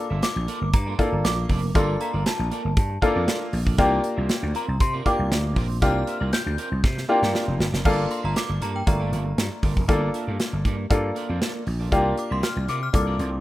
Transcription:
Already playing: A#3 D4 F4 A4 D6
0.10 G1 A#3 F4 A4 E5
0.23 D6, snare, closed hi-hat
0.36 A#1, muted clean electric guitar stroke
0.48 A#3 F4 A4 D5, closed hi-hat
0.61 G1, muted clean electric guitar stroke
0.73 G2 A#5, muted clean electric guitar stroke, kick, closed hi-hat
0.86 A#3 F4 A4 D5
0.98 A#3 D4 F4 A4 D5, kick, closed hi-hat
1.12 G1, muted clean electric guitar stroke
1.24 A#1 D6, snare, closed hi-hat
1.37 muted clean electric guitar stroke
1.49 F1 A#3 F4 A4 D5, kick, open hi-hat
1.63 muted clean electric guitar stroke
1.75 G1 A#3 D4 F4 A4 D5 C6, kick, closed hi-hat
2.00 A#3 F4 A4 E5 A#5, closed hi-hat
2.14 G1 A#3 F4 A4 D5
2.26 A5, snare, closed hi-hat
2.39 A#1, muted clean electric guitar stroke
2.51 A#3 F4 A4 D5, closed hi-hat
2.64 G1, muted clean electric guitar stroke
2.77 G2, muted clean electric guitar stroke, kick, closed hi-hat
2.90 muted clean electric guitar stroke
3.02 A#3 D4 F4 A4 D5, kick, closed hi-hat
3.15 F2 A#3 F4 A4 D5
3.27 A#3 F4 A4 D5, snare, closed hi-hat
3.40 muted clean electric guitar stroke
3.53 A#1, muted clean electric guitar stroke, open hi-hat
3.66 A#3 F4 A4 D5, kick
3.78 C2 A#3 C4 D4 F4 G4 A#4 D5, kick, closed hi-hat
4.03 muted clean electric guitar stroke, closed hi-hat
4.17 C2 C4 F4 A#4 E5
4.29 snare, closed hi-hat
4.42 D2, muted clean electric guitar stroke
4.54 C4 F4 A#4 D5 A#5, closed hi-hat
4.68 C2, muted clean electric guitar stroke
4.80 C3 C6, muted clean electric guitar stroke, kick, closed hi-hat
4.93 C4 F4 A#4 D5
5.05 A#3 C4 D4 F4 G4 A#4 D5 D6, kick, closed hi-hat
5.19 C2, muted clean electric guitar stroke
5.31 D2, snare, closed hi-hat
5.44 muted clean electric guitar stroke
5.56 A#1 C4 F4 A#4 D5, kick, open hi-hat
5.70 muted clean electric guitar stroke
5.81 C2 A#3 C4 D4 F4 G4 A#4 D5 F6, kick, closed hi-hat
6.07 C4 F4 A#4 E5, closed hi-hat
6.20 C2 C4 F4 A#4 D5
6.33 G6, snare, closed hi-hat
6.46 D2, muted clean electric guitar stroke
6.57 C4 F4 A#4 D5, closed hi-hat
6.71 C2, muted clean electric guitar stroke
6.83 C3, muted clean electric guitar stroke, kick, snare
6.96 muted clean electric guitar stroke, snare
7.08 A#3 C4 D4 F4 G4 A#4 D5
7.22 G2 C4 F4 A#4, snare
7.34 C4 F4 A#4 D5, snare
7.47 F1, muted clean electric guitar stroke
7.60 G1, snare
7.73 F1 C4 F4 A#4 D5, snare
7.85 G1 A#3 D4 F4 A4 D5, kick, crash
8.10 C6, muted clean electric guitar stroke, closed hi-hat
8.23 G1 A#3 F4 A4 E5 A#5
8.36 D6, snare, closed hi-hat
8.49 G1, muted clean electric guitar stroke
8.61 G2 A#3 F4 A4 D5 A#5, closed hi-hat
8.74 G5, muted clean electric guitar stroke
8.86 G1 A3 A#3 D4 F4 A#5, muted clean electric guitar stroke, kick, closed hi-hat
9.00 A#3 F4 A4 D5
9.12 G1 A#3 F4 A4 D5, closed hi-hat
9.26 muted clean electric guitar stroke
9.38 G2, snare, closed hi-hat
9.51 muted clean electric guitar stroke
9.63 G1 A#3 F4 A4 D5, kick, open hi-hat
9.76 F1, muted clean electric guitar stroke, kick
9.88 G1 A#3 D4 F4 A4 D5, kick, closed hi-hat
10.14 A#3 F4 A4 E5, closed hi-hat
10.27 G2 A#3 F4 A4 D5
10.40 snare, closed hi-hat
10.53 G1, muted clean electric guitar stroke
10.64 G2 A#3 F4 A4 D5, kick, closed hi-hat
10.78 muted clean electric guitar stroke
10.90 G2 A#3 D4 F4 A4, kick, closed hi-hat
11.04 muted clean electric guitar stroke
11.15 A#3 F4 A4 D5, closed hi-hat
11.29 F2 A#3 F4 A4 D5
11.41 A#3 F4 A4 D5, snare, closed hi-hat
11.54 muted clean electric guitar stroke
11.66 A#1, muted clean electric guitar stroke, open hi-hat
11.80 A#3 F4 A4 D5
11.92 C2 A#3 C4 D4 F4 G4 A#4 D5, kick, closed hi-hat
12.17 D6, muted clean electric guitar stroke, closed hi-hat
12.30 C2 C4 F4 A#4 E5 C6
12.43 F6, snare, closed hi-hat
12.56 C2, muted clean electric guitar stroke
12.68 C3 C4 F4 A#4 D5 D6, closed hi-hat
12.82 F6, muted clean electric guitar stroke
12.93 C2 A#3 D4 F4 A4 D6, muted clean electric guitar stroke, kick, closed hi-hat
13.07 C4 F4 A#4 D5
13.19 C2 C4 F4 A#4 D5, closed hi-hat
13.32 muted clean electric guitar stroke

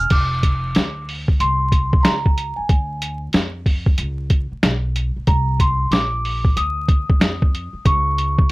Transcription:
Already playing: F6
0.00 maracas
0.10 F1 D6, kick, closed hi-hat, crash
0.43 kick, closed hi-hat
0.75 D2, snare, closed hi-hat
1.09 open hi-hat
1.28 kick
1.40 C2 C6, closed hi-hat
1.72 kick, closed hi-hat
1.93 kick
2.01 A#5 C6
2.05 C#2, snare, closed hi-hat
2.26 kick
2.38 closed hi-hat
2.56 G#5, muted upright bass stroke
2.69 D2, kick, closed hi-hat
3.02 closed hi-hat
3.33 F2, snare, closed hi-hat
3.66 kick, open hi-hat
3.86 kick
3.98 C#2, closed hi-hat
4.30 kick, closed hi-hat
4.52 muted upright bass stroke
4.63 B1, snare, closed hi-hat
4.96 closed hi-hat
5.16 muted upright bass stroke
5.27 C2 A#5, kick, closed hi-hat
5.60 C6, kick, closed hi-hat
5.91 A#1 D6, snare, closed hi-hat
6.25 open hi-hat
6.45 kick
6.56 D2 D#6, closed hi-hat
6.89 kick, closed hi-hat
7.10 muted upright bass stroke, kick
7.20 F2, snare, closed hi-hat
7.42 kick
7.55 closed hi-hat
7.73 muted upright bass stroke
7.85 C#2 C#6, kick, closed hi-hat
8.18 closed hi-hat
8.38 kick

